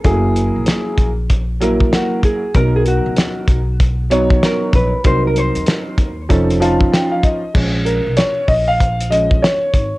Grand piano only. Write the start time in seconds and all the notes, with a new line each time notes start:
0.04 F#3 A3 E4 G#4
0.11 A#3
1.60 F#3 A#3 E4 A#4
2.54 F#3 B3 D#4 A#4
4.10 F#3 B3 D#4 C#5
5.04 F#3 C4 D#4 A#4
6.29 F3 C#4 D#4 A4
6.60 F3 C#4 D#4 F4 A5
6.92 G5
7.11 F5
7.23 D#5
7.54 F3 G#3 C#4
7.85 A#4
8.17 C#5
8.48 D#5
8.68 F5
9.10 F3 G#3 C#4 D#5
9.42 C#5